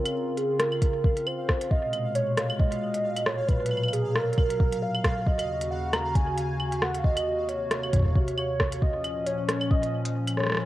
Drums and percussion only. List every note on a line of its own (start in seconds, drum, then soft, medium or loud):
0.06 closed hi-hat medium
0.06 claves medium
0.38 closed hi-hat medium
0.60 cross-stick loud
0.60 closed hi-hat medium
0.72 claves medium
0.82 kick loud
0.82 closed hi-hat medium
1.04 kick loud
1.17 closed hi-hat medium
1.26 claves medium
1.49 kick medium
1.49 cross-stick loud
1.61 closed hi-hat medium
1.71 kick medium
1.93 closed hi-hat medium
1.93 claves soft
2.15 closed hi-hat medium
2.38 cross-stick loud
2.38 closed hi-hat medium
2.50 claves medium
2.60 kick loud
2.72 closed hi-hat medium
2.94 closed hi-hat medium
3.17 closed hi-hat medium
3.17 claves medium
3.26 cross-stick loud
3.49 kick medium
3.49 closed hi-hat medium
3.66 closed hi-hat medium
3.71 claves soft
3.77 claves soft
3.83 claves medium
3.88 claves medium
3.93 closed hi-hat medium
4.15 cross-stick loud
4.33 closed hi-hat medium
4.37 kick loud
4.37 claves soft
4.50 closed hi-hat medium
4.60 kick loud
4.72 closed hi-hat medium
4.94 claves medium
5.04 kick medium
5.04 cross-stick loud
5.04 closed hi-hat medium
5.26 kick medium
5.39 closed hi-hat medium
5.39 claves soft
5.61 closed hi-hat medium
5.93 cross-stick loud
5.93 closed hi-hat soft
5.93 claves medium
6.15 kick loud
6.15 closed hi-hat medium
6.38 closed hi-hat medium
6.60 claves medium
6.72 closed hi-hat medium
6.82 cross-stick loud
6.94 closed hi-hat medium
7.04 kick medium
7.17 closed hi-hat medium
7.17 claves medium
7.49 closed hi-hat soft
7.71 cross-stick loud
7.71 closed hi-hat medium
7.83 claves medium
7.93 kick loud
7.93 closed hi-hat medium
7.96 kick medium
7.99 kick medium
8.02 kick medium
8.06 kick soft
8.08 kick soft
8.10 kick soft
8.13 kick soft
8.15 kick loud
8.28 closed hi-hat soft
8.37 claves medium
8.60 kick medium
8.60 cross-stick loud
8.72 closed hi-hat medium
8.82 kick medium
9.04 closed hi-hat medium
9.04 claves medium
9.26 closed hi-hat medium
9.49 cross-stick loud
9.49 closed hi-hat medium
9.61 claves medium
9.71 kick loud
9.83 closed hi-hat medium
10.06 closed hi-hat medium
10.28 closed hi-hat medium
10.28 claves medium
10.38 cross-stick medium
10.41 cross-stick medium
10.44 cross-stick medium
10.47 cross-stick medium
10.50 cross-stick medium
10.52 cross-stick medium
10.55 cross-stick medium
10.57 cross-stick loud